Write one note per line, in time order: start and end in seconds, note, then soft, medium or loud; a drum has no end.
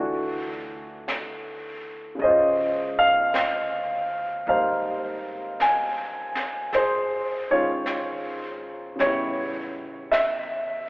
0.00 2.15 D2 medium
0.00 2.18 E3 medium
0.00 2.19 A3 soft
0.00 2.21 D4 soft
0.00 2.23 F#4 medium
1.08 brush sweep soft
1.08 snare soft
1.08 hi-hat pedal soft
2.15 6.70 C#3 soft
2.15 6.72 G#3 soft
2.19 3.29 C#2 medium
2.19 6.74 C#4 soft
2.19 3.00 D#5 medium
2.19 brush sweep soft
2.24 6.76 F4 soft
2.24 4.44 C5 medium
2.99 4.07 F5 medium
3.33 4.42 D2 medium
3.33 brush sweep soft
3.33 snare soft
3.33 hi-hat pedal soft
4.47 6.69 G#1 medium
4.47 6.74 G3 soft
4.47 6.73 A#3 soft
4.47 6.73 D#4 soft
4.47 6.70 C5 soft
4.47 5.64 F5 medium
4.47 brush sweep soft
5.60 6.70 G#5 medium
5.60 brush sweep soft
5.60 snare soft
5.60 hi-hat pedal soft
6.35 snare soft
6.73 8.95 A#1 medium
6.73 7.47 C5 medium
6.73 brush sweep soft
6.73 snare soft
6.77 8.97 G#4 medium
7.50 8.99 D#3 soft
7.50 9.00 G#3 soft
7.50 9.00 C#4 soft
7.50 9.00 F4 medium
7.50 8.60 C#5 medium
7.86 brush sweep soft
7.86 snare soft
7.86 hi-hat pedal medium
8.96 10.89 C#3 soft
8.96 10.89 G3 soft
8.96 brush sweep soft
8.96 snare soft
9.00 10.89 A1 medium
9.00 10.89 B3 soft
9.00 10.89 G4 soft
9.00 10.09 C#5 medium
9.06 10.89 E4 medium
10.11 10.89 E5 medium
10.11 brush sweep soft
10.11 snare soft
10.11 hi-hat pedal soft